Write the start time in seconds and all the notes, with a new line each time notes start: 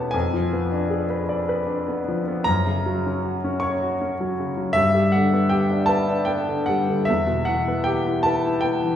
Already playing: E2 B2 B3 C#4 G4 B4 C#5 G5 A5
0.11 F2 G#5
0.33 F3
0.53 B3
0.72 D4
0.90 G#4
1.10 B4
1.29 D5
1.49 B4
1.67 D4
1.88 B3
2.08 F3
2.28 B3
2.44 F#2 A#5
2.66 C#3
2.86 F#3
3.06 C#4
3.24 F#4
3.44 C#4
3.60 C#5 C#6
3.82 F#4
4.01 C#4
4.20 F#3
4.39 C#3
4.57 F#3
4.73 G2 E5
4.95 G3
5.12 D3 F#5
5.33 B3
5.49 G4 G5
5.70 D4
5.86 B4 A5
6.08 D4
6.25 B3 G5
6.49 D3
6.66 G3 F#5
6.89 D3
7.05 E2 E5
7.27 B2
7.45 E3 F#5
7.68 B3
7.84 G4 G5
8.07 E4
8.23 B4 A5
8.46 E4
8.61 B3 G5
8.84 E3